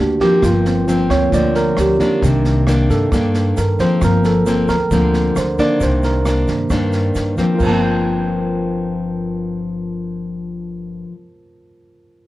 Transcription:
Already playing: G2 D#3 A#3 F#4 G4
0.00 D2 D4
0.20 F3 A#3 C4 G4, kick, snare
0.42 G1 G2 F4, kick, cross-stick, snare, shaker
0.65 C4, snare, shaker
0.88 F3 A#3 C4, snare, shaker
1.10 D2 F3 A#3 C4 C#5, kick, cross-stick, snare, shaker
1.32 D2 D3 F3 A#3 C4 D5, kick, snare, shaker
1.55 A#4, snare, shaker
1.77 D2 G4, cross-stick, snare, shaker
1.99 D#3 A#3 D4 D#4, kick, snare, shaker
2.22 C2 C3 D#3 A#3 D4, kick, snare, shaker
2.44 snare, shaker
2.67 D#3 A#3 D4, cross-stick, snare, shaker
2.90 G2 A4, kick, snare, shaker
3.12 G2 D#3 A#3 D4, kick, cross-stick, snare, shaker
3.34 snare, shaker
3.57 G2 A#4, snare, shaker
3.79 F3 A#3 C4 C5, kick, snare, shaker
4.01 G1 G2 F3 A#3 C4 A#4, kick, cross-stick, snare, shaker
4.24 A4, snare, shaker
4.46 F3 A#3 C4, snare, shaker
4.68 D2 A#4, kick, cross-stick, snare, shaker
4.91 D2 D3 F3 A#3 C4, kick, snare, shaker
5.14 snare, shaker
5.36 D2 C5, cross-stick, snare, shaker
5.58 D#3 A#3 D4 D5, kick, snare, shaker
5.80 C2 C3 C5, kick, snare, shaker
6.03 A#4, snare, shaker
6.26 D#3 A#3 D4, cross-stick, snare, shaker
6.48 G2 D#3 A#3 D4, kick, snare, shaker
6.70 G2 D#3 A#3 D4, kick, cross-stick, snare, shaker
6.93 snare, shaker
7.15 G2, snare, shaker
7.38 F3 A#3 C4, kick, snare, shaker
7.54 G2 F4
7.59 G1 F3 A#4, kick, crash, shaker
7.63 C5 A5
7.67 A#3
7.72 C4

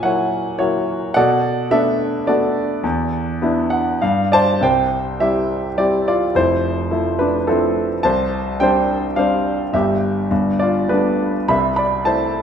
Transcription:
Already playing: A#2 C#5 E5 G#5
0.03 F#3 A#3 E4 C#5 F#5
0.59 F#3 A#3 E4 F#4 C#5
1.14 B2 A4 D5 F#5
1.70 A3 B3 D4 A4 E5
2.27 A3 B3 D4 F#4 A4 D5
2.84 E2
3.42 B3 D4 E4
3.70 F#5
4.02 G2 F5
4.32 C5 D5 A5
4.61 C2 C3 C5 G5
5.19 G3 C4 E4 G4 E5
5.77 G3 C4 E4 G4 D5
6.08 F4 D5
6.35 F1 F2 E4 C5
6.91 F3 A3 E4
7.19 D4 B4
7.47 F3 A3 C4 E4 A4
8.03 C2 C5 A5
8.60 G3 C4 D4 C5 G5
9.16 G3 C4 D4 C5 F5
9.73 G1 G2 G4 E5
10.31 G1 G2
10.59 F4 D5
10.89 G3 A3 B3 D4 B4
11.48 C2 C3 E5 B5
11.76 D5 B5
12.05 A3 C4 E4 C5 A5

